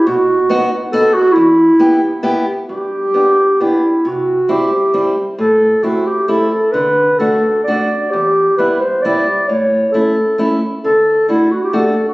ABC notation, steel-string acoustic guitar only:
X:1
M:3/4
L:1/8
Q:1/4=134
K:Em
V:1 name="Steel-string acoustic guitar"
B,,2 [B,^DF] z [B,DF] z | E,,2 [B,EG] z [B,EG] z | [K:G] G,,2 [B,DG] z [B,DG] z | C,2 [G,CE] z [G,CE] z |
A,,2 [A,CE] z [A,CE] z | D,2 [A,DF] z [A,DF] z | E,,2 [G,B,E] z [G,B,E] z | A,,2 [A,^CE] z [A,CE] z |
D,2 [A,DF] z [A,DF] z |]